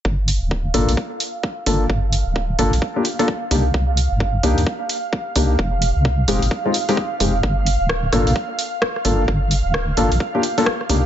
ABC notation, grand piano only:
X:1
M:4/4
L:1/16
Q:"Swing 16ths" 1/4=130
K:Gm
V:1 name="Grand piano"
z6 [B,DFA] z6 z [B,DFA] z | z6 [B,DFA] z2 [B,DFG] z [B,DFA] z2 [B,DEG] z | z6 [B,DEG] z6 z [B,DEG] z | z6 [_A,CEG] z2 [A,CEF] z [A,CEG] z2 [A,CEG] z |
z6 [B,DFA] z6 z [B,DFA] z | z6 [B,DFA] z2 [B,DFG] z [B,DFA] z2 [B,DEG] z |]